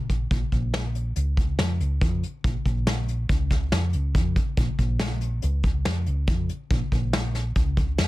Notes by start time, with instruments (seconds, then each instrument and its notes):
0.00 fingered electric bass A#1
0.09 kick, closed hi-hat
0.31 fingered electric bass A#1, kick, closed hi-hat
0.52 fingered electric bass A#1, kick, closed hi-hat
0.74 snare, closed hi-hat
0.95 closed hi-hat
1.16 fingered electric bass C#2, closed hi-hat
1.37 kick, closed hi-hat
1.59 fingered electric bass F2, snare, closed hi-hat
1.80 fingered electric bass C#2, closed hi-hat
2.01 fingered electric bass F2, kick, closed hi-hat
2.23 closed hi-hat
2.44 fingered electric bass A#1, kick, closed hi-hat
2.65 fingered electric bass A#1, kick, closed hi-hat
2.87 snare, closed hi-hat
3.08 closed hi-hat
3.29 fingered electric bass C#2, kick, closed hi-hat
3.50 kick, snare, closed hi-hat
3.72 fingered electric bass F2, snare, closed hi-hat
3.93 fingered electric bass C#2, closed hi-hat
4.15 fingered electric bass F2, kick, closed hi-hat
4.36 kick, closed hi-hat
4.57 fingered electric bass A#1, kick, closed hi-hat
4.79 fingered electric bass A#1, kick, closed hi-hat
4.99 snare, closed hi-hat
5.21 closed hi-hat
5.42 fingered electric bass C#2, closed hi-hat
5.63 kick, closed hi-hat
5.85 fingered electric bass F2, snare, closed hi-hat
6.06 fingered electric bass C#2, closed hi-hat
6.27 fingered electric bass F2, kick, closed hi-hat
6.49 closed hi-hat
6.70 fingered electric bass A#1, kick, closed hi-hat
6.92 fingered electric bass A#1, kick, closed hi-hat
7.13 snare, closed hi-hat
7.35 snare, closed hi-hat
7.56 fingered electric bass C#2, kick, closed hi-hat
7.77 kick, closed hi-hat
7.98 fingered electric bass F2, snare, closed hi-hat